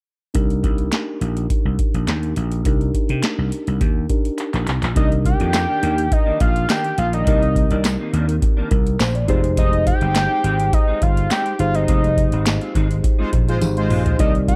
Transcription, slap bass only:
0.35 C2
0.63 C2
1.21 A#1
1.65 C2
1.94 A#1
2.08 D#2
2.37 A#1
2.65 C2
3.10 C3
3.38 C2
3.67 C2
3.81 D#2
4.54 A#1
4.67 C2
4.83 A#1
4.96 C2
5.40 F2
5.83 D#2
6.40 A#1
6.98 A#1
7.27 C2
7.71 C2
8.13 D#2
8.71 C2
9.00 A#1
9.29 F1
10.01 G1
10.44 G#1
11.02 G1
11.59 G1
11.88 F1
12.33 G#1
12.75 G#1
13.33 A#1
13.61 G#1
13.90 A#1
14.19 C2

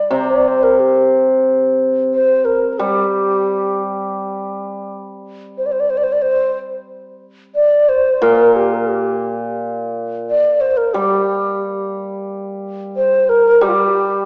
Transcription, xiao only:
Already playing: D5
0.13 C5
0.31 D5
0.48 C5
0.63 A#4
0.79 G4
2.14 C5
2.45 A#4
2.73 A#4
2.79 G4
5.58 C5
5.66 D5
5.72 C5
5.80 D5
5.90 C5
5.97 D5
6.04 C5
6.12 D5
6.22 C5
7.55 D5
7.89 C5
8.22 A#4
8.56 G4
8.74 A#4
8.90 G4
10.30 D5
10.61 C5
10.77 A#4
10.94 G4
12.96 C5
13.29 A#4
13.63 G4
13.69 F4
13.74 G4

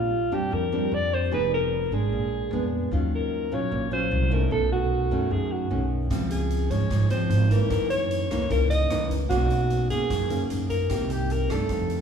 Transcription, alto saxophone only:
Already playing: F4
0.34 G4
0.54 A#4
0.94 D5
1.14 C5
1.34 B4
1.54 A#4
1.94 G#4
3.15 A#4
3.54 C#5
3.93 C5
4.33 A#4
4.52 A4
4.72 F#4
5.32 G#4
5.52 F#4
6.31 G#4
6.71 C#5
7.11 C5
7.50 A#4
7.71 A#4
7.90 C#5
8.51 A#4
8.70 D#5
9.29 F#4
9.91 G#4
10.70 A#4
11.12 G4
11.32 A#4
11.51 A4

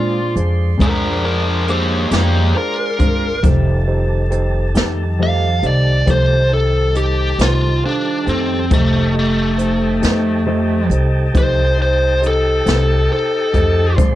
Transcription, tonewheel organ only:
Already playing: G#3 D4 C5
3.42 D#3 G3 A4
8.72 D#4 G4 A4
13.96 G#3 D4 C5

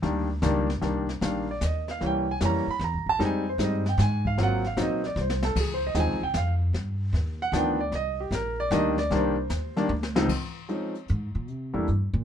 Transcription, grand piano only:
0.02 D#3 G3 A#3 D4
0.42 D#3 G3 A#3 D4
0.81 D#3 G3 A#3 D4
1.21 D#3 G3 A#3 D4 F5
1.51 D5
1.65 D#5
1.91 F5
2.01 E3 G3 A#3 C#4
2.06 G5
2.31 G#5
2.41 E3 G3 A#3 C#4
2.46 A#5
2.71 B5
2.84 A#5
3.09 A5
3.19 G3 G#3 C4 D#4
3.25 G#5
3.49 C5
3.59 G3 G#3 C4 D#4
3.64 D#5
3.89 G5
4.02 G#5
4.27 F5
4.38 F#3 A#3 C4 F4
4.43 F#5
4.67 F5
4.77 F#3 A#3 C4 D#4
4.82 D#5
5.06 D5
5.21 C5
5.45 A4
5.61 G#4
5.74 C5
5.87 D#5
5.95 F3 G#3 C4 D#4 G5
6.00 G#5
6.23 G5
6.37 F5
7.42 F#5
7.53 D#3 F3 B3 D4 G5
7.80 D5
7.95 D#5
8.20 G4
8.35 A#4
8.60 D5
8.71 D#3 G3 A#3 D4 D#5
8.99 D5
9.11 D#3 G3 A#3 D4
9.15 C5
9.76 D#3 G3 A#3 D4
10.15 C#2 F3 G#3 C4 D#4
10.69 F3 G#3 C4 C#4 D#4
11.73 G3 A3 A#3 D4 E4

